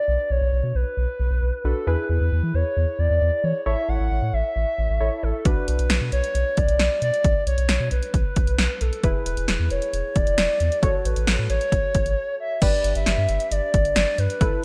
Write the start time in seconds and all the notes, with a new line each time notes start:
Already playing: D4 F#4 B4 D5
0.08 B1
0.30 B1 C#5
0.41 B1
0.53 B1
0.64 B2
0.75 B1 B4
0.97 B1
1.20 B1
1.31 B1
1.42 B1
1.64 B1 D4 F#4 A4 B4
1.87 E2 E4 G#4 B4
2.09 E2 B4
2.21 E2
2.32 E2
2.43 E3
2.54 E2 C#5
2.77 E2
2.99 E2 D5
3.10 E2
3.21 E2
3.44 E3 C#5
3.66 A1 E4 A4 C#5 E5
3.89 A1 F#5
4.00 A1
4.11 A1
4.22 A2
4.33 A1 E5
4.56 A1
4.78 A1
4.90 A1
5.00 A1 E4 A4 C#5
5.23 A1 A4
5.45 B1 D4 F#4 B4, kick, closed hi-hat
5.68 B1 B4, closed hi-hat
5.79 B1, closed hi-hat
5.90 B1, snare, closed hi-hat
6.01 B2
6.12 B1 C#5, closed hi-hat
6.24 closed hi-hat
6.35 B1, closed hi-hat
6.57 B1 D5, kick, closed hi-hat
6.68 B1, closed hi-hat
6.79 B1, snare, closed hi-hat
7.02 B2 D5, closed hi-hat
7.14 closed hi-hat
7.24 B1, kick, closed hi-hat
7.47 B1 C#5, closed hi-hat
7.58 B1, closed hi-hat
7.69 B1, snare, closed hi-hat
7.80 B2
7.91 B1 B4, closed hi-hat
8.03 closed hi-hat
8.14 B1, kick, closed hi-hat
8.36 B1, kick, closed hi-hat
8.47 B1, closed hi-hat
8.58 B1, snare, closed hi-hat
8.81 B1 A4, closed hi-hat
8.93 closed hi-hat
9.03 E1 E4 G#4 B4, kick, closed hi-hat
9.26 E1 B4, closed hi-hat
9.37 E1, closed hi-hat
9.48 E1 B4, snare, closed hi-hat
9.60 E2
9.70 E1 C#5, closed hi-hat
9.82 closed hi-hat
9.93 E1, closed hi-hat
10.16 E1 D5, kick, closed hi-hat
10.27 E1, closed hi-hat
10.38 E1, snare, closed hi-hat
10.60 E2, closed hi-hat
10.72 closed hi-hat
10.83 A1 F#4 A4 C#5, kick, closed hi-hat
10.98 C#5
11.05 A1 B4, closed hi-hat
11.16 A1, closed hi-hat
11.27 A1, snare, closed hi-hat
11.39 A2
11.50 A1 C#5, closed hi-hat
11.61 closed hi-hat
11.72 A1, kick, closed hi-hat
11.95 A1, kick, closed hi-hat
12.06 A1, closed hi-hat
12.40 E5
12.62 G1 D4 G4 B4 D5, kick, closed hi-hat, crash
12.84 G1, closed hi-hat
12.95 G1 E5, closed hi-hat
13.06 G1, snare, closed hi-hat
13.18 G2
13.29 G1, closed hi-hat
13.40 closed hi-hat
13.51 G1 D5, closed hi-hat
13.74 G1, kick, closed hi-hat
13.85 G1, closed hi-hat
13.96 G1 D5, snare, closed hi-hat
14.18 G2 B4, closed hi-hat
14.30 closed hi-hat
14.41 A1 E4 A4 B4, kick, closed hi-hat